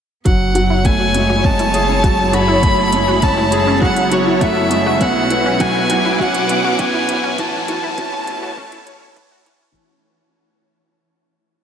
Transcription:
0.25 4.98 F#1 medium
0.25 0.53 F#3 medium
0.25 9.76 B3 medium
0.25 0.33 F#4 medium
0.25 0.87 F#5 medium
0.25 kick medium
0.25 closed hi-hat soft
0.25 riser medium
0.55 0.83 F#3 medium
0.55 0.63 F#4 medium
0.55 closed hi-hat medium
0.63 9.76 E4 medium
0.70 0.78 E4 medium
0.70 5.01 C#5 medium
0.85 1.13 A3 medium
0.85 0.90 F#4 medium
0.85 1.46 G#5 medium
0.85 kick medium
0.85 closed hi-hat soft
1.00 1.08 C#5 medium
1.14 1.32 G#3 medium
1.14 1.23 C#4 medium
1.14 closed hi-hat medium
1.29 1.41 F#4 medium
1.29 mid tom medium
1.44 1.73 G#3 medium
1.44 1.52 C#4 medium
1.44 2.35 A5 medium
1.44 kick medium
1.59 1.67 E4 loud
1.59 closed hi-hat soft
1.74 2.02 G#4 medium
1.74 closed hi-hat medium
1.89 2.00 C#4 medium
2.04 2.31 F#3 medium
2.04 2.12 F#4 loud
2.04 kick loud
2.04 closed hi-hat soft
2.33 2.62 F#3 medium
2.33 2.41 F#4 loud
2.33 3.24 B5 loud
2.33 closed hi-hat medium
2.48 2.56 E4 loud
2.63 2.91 A3 medium
2.63 2.68 F#4 medium
2.63 kick loud
2.63 closed hi-hat soft
2.78 2.86 C#5 medium
2.93 3.10 G#3 medium
2.93 3.01 C#4 medium
2.93 closed hi-hat medium
3.08 3.19 F#4 medium
3.22 3.51 G#3 medium
3.22 3.30 C#4 medium
3.22 3.81 A5 loud
3.22 kick medium
3.22 closed hi-hat soft
3.37 3.45 E4 loud
3.52 3.81 G#4 medium
3.52 closed hi-hat medium
3.67 3.79 C#4 loud
3.67 mid tom medium
3.82 4.10 F#3 medium
3.82 3.90 F#4 loud
3.82 4.14 F#5 loud
3.82 kick loud
3.96 closed hi-hat soft
4.11 4.40 F#3 medium
4.11 4.20 F#4 medium
4.11 4.43 C#5 medium
4.11 closed hi-hat medium
4.27 4.35 E4 loud
4.41 4.69 A3 loud
4.41 4.46 F#4 medium
4.41 5.03 E5 medium
4.41 kick loud
4.41 closed hi-hat soft
4.57 4.64 C#5 medium
4.70 4.88 G#3 medium
4.70 4.79 C#4 medium
4.70 closed hi-hat medium
4.86 4.98 F#4 loud
5.00 7.36 B1 medium
5.00 5.29 B3 medium
5.00 5.09 C#4 loud
5.00 5.62 F#5 medium
5.00 kick loud
5.00 closed hi-hat soft
5.16 5.24 E4 medium
5.30 5.59 B4 medium
5.30 closed hi-hat medium
5.46 5.57 C#4 loud
5.60 5.88 F#3 medium
5.60 5.68 F#4 loud
5.60 6.19 G#5 loud
5.60 kick loud
5.60 closed hi-hat soft
5.89 6.18 F#3 medium
5.89 5.98 F#4 medium
5.89 closed hi-hat medium
5.96 7.39 D6 medium
6.05 6.13 E4 loud
6.05 mid tom medium
6.20 6.48 C#4 loud
6.20 6.25 F#4 medium
6.20 6.81 F#5 medium
6.20 kick loud
6.34 6.42 C#5 medium
6.34 closed hi-hat soft
6.49 6.66 B3 medium
6.49 6.57 C#4 medium
6.49 closed hi-hat medium
6.64 6.76 F#4 loud
6.79 7.07 B3 medium
6.79 6.87 C#4 loud
6.79 7.41 G#5 loud
6.79 kick loud
6.79 closed hi-hat soft
6.94 7.02 E4 loud
7.09 7.37 B4 loud
7.09 closed hi-hat medium
7.24 7.35 C#4 loud
7.38 9.73 A1 medium
7.38 7.67 E3 loud
7.38 7.46 F#4 loud
7.38 9.17 A5 medium
7.38 kick loud
7.38 closed hi-hat soft
7.68 7.97 E3 loud
7.68 7.76 F#4 loud
7.68 closed hi-hat medium
7.83 7.91 E4 loud
7.97 8.26 C#4 loud
7.97 8.03 F#4 medium
7.97 9.77 C#5 medium
7.97 kick loud
7.97 closed hi-hat soft
8.13 8.21 C#5 medium
8.27 8.45 A3 medium
8.27 8.35 C#4 medium
8.27 closed hi-hat medium
8.42 8.54 F#4 loud
8.42 mid tom medium
8.57 8.86 A3 medium
8.57 8.65 C#4 loud
8.57 kick loud
8.72 8.80 E4 loud
8.72 closed hi-hat soft
8.87 9.15 C#5 loud
8.87 closed hi-hat medium
9.02 9.10 C#5 medium
9.16 9.44 E3 loud
9.16 9.21 B4 medium
9.16 kick loud
9.16 closed hi-hat soft
9.31 9.39 F#4 loud
9.46 9.74 E3 loud
9.46 9.54 C#4 medium
9.46 closed hi-hat medium
9.61 9.69 C#4 medium

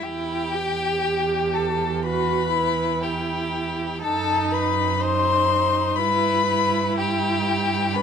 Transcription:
0.01 4.04 E2 medium
0.01 0.55 E4 medium
0.01 1.56 G4 medium
0.01 1.56 G5 loud
0.54 2.07 G4 medium
1.54 2.04 A4 medium
1.54 2.04 A5 medium
2.03 2.53 F#4 medium
2.03 3.04 B4 medium
2.03 3.01 B5 medium
2.54 4.00 E4 medium
3.02 4.01 G4 medium
3.02 4.00 G5 medium
4.01 5.97 F#2 medium
4.01 4.99 D#4 medium
4.01 4.53 A4 medium
4.01 4.55 A5 medium
4.52 5.02 B4 medium
4.52 5.03 B5 medium
5.00 6.00 D#4 medium
5.00 5.97 C5 medium
5.00 5.98 C6 loud
5.96 8.03 G2 medium
5.96 6.47 E4 medium
5.96 6.96 B4 medium
5.96 6.97 B5 loud
6.48 7.94 E4 medium
6.98 7.97 G4 medium
6.98 7.95 G5 loud
7.93 8.03 B4 loud
7.93 8.03 B5 loud
7.98 8.03 D4 medium

